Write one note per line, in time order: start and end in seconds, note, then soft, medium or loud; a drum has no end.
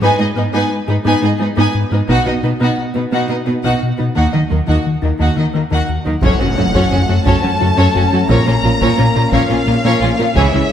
0.01 0.12 G#2 medium
0.01 0.09 G#2 medium
0.01 0.12 G#3 medium
0.01 0.18 B3 medium
0.01 0.18 D#4 medium
0.01 0.18 B4 medium
0.01 0.18 G#5 medium
0.18 0.26 G#2 medium
0.18 0.29 G#3 medium
0.18 0.26 B3 medium
0.18 0.26 D#4 medium
0.18 0.29 D#4 medium
0.18 0.27 G#4 soft
0.18 0.27 D#5 soft
0.35 0.46 G#2 medium
0.35 0.44 G#2 medium
0.35 0.46 B3 medium
0.35 0.43 B3 medium
0.35 0.43 D#4 soft
0.35 0.44 D#4 soft
0.35 0.44 B4 soft
0.52 0.64 G#2 medium
0.52 0.61 G#2 medium
0.52 0.64 G#3 medium
0.52 0.69 B3 medium
0.52 0.69 D#4 medium
0.52 0.70 B4 medium
0.52 0.69 G#5 medium
0.70 0.81 G#3 medium
0.87 0.98 G#2 medium
0.87 0.95 G#2 soft
0.87 0.94 B3 soft
0.87 0.95 D#4 medium
0.87 0.96 D#4 soft
0.87 0.98 G#4 medium
0.87 0.96 B4 medium
1.04 1.16 G#2 medium
1.04 1.12 G#2 medium
1.04 1.15 G#3 medium
1.04 1.20 B3 medium
1.04 1.20 D#4 medium
1.04 1.22 B4 medium
1.04 1.22 G#5 medium
1.21 1.29 G#2 medium
1.21 1.33 G#3 medium
1.21 1.29 B3 soft
1.21 1.29 D#4 soft
1.21 1.33 D#4 medium
1.21 1.31 G#4 soft
1.21 1.31 D#5 soft
1.39 1.47 G#2 medium
1.39 1.50 G#3 medium
1.39 1.46 B3 medium
1.39 1.46 D#4 medium
1.39 1.50 D#4 medium
1.39 1.48 D#4 soft
1.39 1.48 B4 soft
1.56 1.64 G#2 medium
1.56 1.68 G#2 medium
1.56 1.68 G#3 medium
1.56 1.73 B3 medium
1.56 1.73 D#4 medium
1.56 1.74 B4 medium
1.56 1.74 G#5 medium
1.75 1.85 G#2 medium
1.91 1.98 G#2 soft
1.91 2.02 G#2 medium
1.91 1.98 B3 medium
1.91 2.02 B3 medium
1.91 1.98 D#4 soft
1.91 2.00 D#4 soft
1.91 2.00 B4 soft
2.08 2.16 B2 medium
2.08 2.19 B2 medium
2.08 2.24 B3 medium
2.08 2.19 B3 medium
2.08 2.24 D#4 medium
2.08 2.25 F#4 medium
2.08 2.25 F#5 medium
2.08 taiko medium
2.26 2.33 B2 soft
2.26 2.33 B3 soft
2.26 2.37 B3 medium
2.26 2.33 D#4 soft
2.26 2.37 F#4 soft
2.26 2.34 D#5 soft
2.43 2.53 B2 medium
2.43 2.51 B2 soft
2.43 2.50 B3 soft
2.43 2.51 B3 soft
2.43 2.50 D#4 soft
2.43 2.54 D#4 medium
2.43 2.51 B4 soft
2.60 2.71 B2 medium
2.60 2.68 B2 medium
2.60 2.76 B3 medium
2.60 2.71 B3 medium
2.60 2.76 D#4 medium
2.60 2.77 F#4 soft
2.60 2.77 F#5 medium
2.78 2.88 B3 medium
2.95 3.02 B2 soft
2.95 3.06 B2 medium
2.95 3.02 B3 soft
2.95 3.03 B3 soft
2.95 3.02 D#4 soft
2.95 3.06 B4 medium
2.95 3.03 B4 soft
3.12 3.23 B2 medium
3.12 3.19 B2 medium
3.12 3.28 B3 medium
3.12 3.23 B3 medium
3.12 3.28 D#4 medium
3.12 3.29 F#4 medium
3.12 3.28 F#5 soft
3.29 3.36 B2 soft
3.29 3.36 B3 soft
3.29 3.41 B3 medium
3.29 3.36 D#4 soft
3.29 3.40 F#4 medium
3.29 3.36 D#5 soft
3.46 3.54 B2 soft
3.46 3.53 B3 soft
3.46 3.54 B3 soft
3.46 3.58 B3 medium
3.46 3.54 D#4 soft
3.46 3.57 F#4 soft
3.46 3.53 B4 soft
3.64 3.71 B2 soft
3.64 3.75 B2 medium
3.64 3.80 B3 soft
3.64 3.75 B3 medium
3.64 3.80 D#4 medium
3.64 3.80 F#4 medium
3.64 3.80 F#5 medium
3.64 taiko soft
3.83 3.93 B2 soft
3.98 4.05 B2 soft
3.98 4.10 B2 medium
3.98 4.05 B3 soft
3.98 4.05 D#4 soft
3.98 4.09 D#4 soft
3.98 4.05 B4 soft
4.15 4.27 D#2 medium
4.15 4.26 D#3 medium
4.15 4.23 D#3 soft
4.15 4.32 A#3 medium
4.15 4.32 D#4 soft
4.15 4.31 F#4 soft
4.15 4.31 F#5 soft
4.32 4.40 D#3 soft
4.32 4.44 D#3 soft
4.32 4.40 A#3 soft
4.32 4.43 A#3 soft
4.32 4.39 D#4 soft
4.32 4.40 D#4 soft
4.32 4.40 D#5 soft
4.50 4.61 D#2 medium
4.50 4.57 D#3 soft
4.50 4.61 F#3 soft
4.50 4.57 A#3 soft
4.50 4.57 D#4 soft
4.50 4.57 A#4 soft
4.67 4.78 D#2 medium
4.67 4.78 D#3 medium
4.67 4.75 D#3 soft
4.67 4.84 A#3 soft
4.67 4.83 D#4 soft
4.67 4.83 F#4 soft
4.67 4.83 F#5 soft
4.86 4.96 D#3 medium
5.02 5.13 D#2 medium
5.02 5.09 D#3 soft
5.02 5.09 A#3 soft
5.02 5.10 A#3 soft
5.02 5.09 D#4 soft
5.02 5.12 D#4 medium
5.02 5.10 A#4 soft
5.19 5.30 D#2 medium
5.19 5.30 D#3 medium
5.19 5.26 D#3 soft
5.19 5.35 A#3 soft
5.19 5.35 D#4 soft
5.19 5.36 F#4 soft
5.19 5.36 F#5 soft
5.37 5.44 D#3 soft
5.37 5.47 D#3 medium
5.37 5.47 A#3 soft
5.37 5.44 A#3 soft
5.37 5.44 D#4 soft
5.37 5.45 D#4 soft
5.37 5.45 D#5 soft
5.54 5.61 D#3 soft
5.54 5.65 D#3 medium
5.54 5.61 A#3 soft
5.54 5.64 A#3 medium
5.54 5.62 A#3 soft
5.54 5.61 D#4 soft
5.54 5.62 A#4 soft
5.71 5.82 D#2 medium
5.71 5.78 D#3 soft
5.71 5.81 D#3 medium
5.71 5.87 A#3 soft
5.71 5.87 D#4 soft
5.71 5.88 F#4 soft
5.71 5.88 F#5 soft
5.89 5.99 D#2 medium
6.05 6.16 D#2 medium
6.05 6.13 D#3 soft
6.05 6.16 F#3 soft
6.05 6.12 A#3 soft
6.05 6.13 A#3 soft
6.05 6.12 D#4 soft
6.05 6.13 A#4 soft
6.22 6.29 F#1 medium
6.22 6.30 F#2 medium
6.22 6.34 F#2 medium
6.22 6.38 F#3 medium
6.22 6.33 F#3 medium
6.22 8.26 A3 medium
6.22 6.39 C#4 medium
6.22 10.33 C#4 medium
6.22 6.39 A4 medium
6.22 6.39 C#5 medium
6.22 7.22 F#5 medium
6.22 taiko medium
6.22 impact medium
6.39 6.47 F#2 soft
6.39 6.51 F#2 medium
6.39 6.47 F#3 soft
6.39 6.47 C#4 soft
6.39 6.46 F#4 soft
6.39 6.51 F#4 medium
6.57 6.64 F#1 medium
6.57 6.64 F#2 soft
6.57 6.64 F#3 soft
6.57 6.68 F#3 medium
6.57 6.64 C#4 soft
6.57 6.68 C#4 medium
6.57 6.64 F#4 soft
6.57 6.64 A4 soft
6.74 6.85 F#2 medium
6.74 6.82 F#2 medium
6.74 6.90 F#3 medium
6.74 6.85 F#3 medium
6.74 6.90 C#4 medium
6.74 6.90 A4 soft
6.74 6.90 C#5 soft
6.74 taiko medium
6.91 6.99 F#1 soft
6.91 6.98 F#2 soft
6.91 7.03 F#2 medium
6.91 6.98 F#3 soft
6.91 7.03 A3 medium
6.91 6.98 C#4 soft
6.91 6.99 C#4 soft
6.91 6.99 F#4 soft
7.08 7.16 F#2 soft
7.08 7.20 F#2 medium
7.08 7.15 F#3 soft
7.08 7.20 A3 soft
7.08 7.15 C#4 soft
7.08 7.16 F#4 soft
7.08 7.15 A4 soft
7.25 7.33 F#1 medium
7.25 7.33 F#2 medium
7.25 7.37 F#2 medium
7.25 7.41 F#3 medium
7.25 7.37 F#3 medium
7.25 7.41 C#4 medium
7.25 7.42 A4 medium
7.25 7.42 C#5 medium
7.25 8.27 A5 medium
7.25 taiko medium
7.42 7.51 F#2 soft
7.42 7.50 F#3 soft
7.42 7.54 F#3 medium
7.42 7.50 C#4 soft
7.42 7.54 C#4 medium
7.42 7.49 F#4 soft
7.60 7.67 F#1 soft
7.60 7.68 F#2 soft
7.60 7.72 F#2 medium
7.60 7.67 F#3 soft
7.60 7.67 C#4 medium
7.60 7.67 F#4 soft
7.60 7.71 F#4 medium
7.60 7.67 A4 soft
7.77 7.88 F#2 medium
7.77 7.85 F#2 medium
7.77 7.93 F#3 medium
7.77 7.88 F#3 medium
7.77 7.93 C#4 medium
7.77 7.93 A4 medium
7.77 7.93 C#5 medium
7.94 8.02 F#1 soft
7.94 8.06 F#2 medium
7.94 8.02 F#2 soft
7.94 8.01 F#3 soft
7.94 8.01 C#4 soft
7.94 8.02 C#4 medium
7.94 8.06 F#4 medium
7.94 8.03 F#4 soft
8.12 8.19 F#2 soft
8.12 8.19 F#3 soft
8.12 8.23 F#3 medium
8.12 8.19 C#4 soft
8.12 8.23 C#4 medium
8.12 8.20 F#4 soft
8.12 8.20 A4 soft
8.29 8.36 A#1 medium
8.29 8.40 A#2 medium
8.29 8.37 A#2 medium
8.29 8.45 F3 medium
8.29 8.40 A#3 medium
8.29 10.33 A#3 medium
8.29 8.45 C#4 medium
8.29 8.46 A#4 medium
8.29 8.46 C#5 medium
8.29 9.31 A#5 medium
8.29 taiko medium
8.46 8.53 A#2 soft
8.46 8.58 A#2 medium
8.46 8.53 F3 soft
8.46 8.53 C#4 soft
8.46 8.54 C#4 soft
8.46 8.53 F4 soft
8.46 8.58 A#4 soft
8.64 8.71 A#1 soft
8.64 8.71 A#2 soft
8.64 8.71 F3 soft
8.64 8.75 A#3 medium
8.64 8.71 C#4 soft
8.64 8.71 F4 soft
8.64 8.75 F4 medium
8.64 8.71 A#4 soft
8.80 8.88 A#2 medium
8.80 8.92 A#2 medium
8.80 8.97 F3 soft
8.80 8.92 A#3 medium
8.80 8.97 C#4 medium
8.80 8.97 A#4 medium
8.80 8.97 C#5 medium
8.80 taiko medium
8.97 9.05 A#1 soft
8.97 9.05 A#2 soft
8.97 9.09 A#2 medium
8.97 9.05 F3 soft
8.97 9.04 C#4 soft
8.97 9.05 C#4 soft
8.97 9.09 C#4 medium
8.97 9.04 F4 soft
9.14 9.22 A#2 soft
9.14 9.27 A#2 medium
9.14 9.23 F3 soft
9.14 9.23 C#4 soft
9.14 9.27 C#4 medium
9.14 9.22 F4 soft
9.14 9.22 A#4 soft
9.32 9.39 A#1 medium
9.32 9.39 A#2 medium
9.32 9.44 A#2 medium
9.32 9.49 F3 medium
9.32 9.44 A#3 medium
9.32 9.49 C#4 medium
9.32 9.48 A#4 medium
9.32 9.48 C#5 medium
9.32 10.34 F5 medium
9.32 taiko medium
9.49 9.57 A#2 soft
9.49 9.57 F3 soft
9.49 9.61 A#3 medium
9.49 9.56 C#4 soft
9.49 9.57 C#4 soft
9.49 9.56 F4 soft
9.49 9.61 F4 medium
9.66 9.74 A#1 soft
9.66 9.74 A#2 soft
9.66 9.78 A#2 medium
9.66 9.74 F3 soft
9.66 9.75 C#4 soft
9.66 9.73 F4 soft
9.66 9.74 A#4 medium
9.66 9.78 A#4 medium
9.84 9.91 A#2 medium
9.84 9.95 A#2 medium
9.84 10.01 F3 soft
9.84 9.95 A#3 medium
9.84 10.01 C#4 medium
9.84 10.00 A#4 medium
9.84 10.00 C#5 medium
10.01 10.08 A#1 soft
10.01 10.09 A#2 soft
10.01 10.12 A#2 medium
10.01 10.09 F3 soft
10.01 10.08 C#4 medium
10.01 10.10 C#4 soft
10.01 10.08 F4 medium
10.01 10.13 A#4 medium
10.18 10.26 A#2 soft
10.18 10.27 F3 soft
10.18 10.29 A#3 medium
10.18 10.26 C#4 soft
10.18 10.25 F4 soft
10.18 10.30 F4 medium
10.18 10.25 A#4 soft
10.35 10.43 C#2 medium
10.35 10.47 C#2 medium
10.35 10.43 C#3 medium
10.35 10.47 C#3 medium
10.35 10.53 E3 medium
10.35 10.72 G#3 medium
10.35 10.72 C#4 medium
10.35 10.53 E4 medium
10.35 10.52 G#4 medium
10.35 10.52 C#5 medium
10.35 10.72 E5 medium
10.35 taiko medium
10.53 10.64 C#2 medium
10.53 10.60 C#3 soft
10.53 10.61 E3 soft
10.53 10.60 C#4 soft
10.53 10.64 C#4 medium
10.53 10.60 E4 soft
10.53 10.61 E4 soft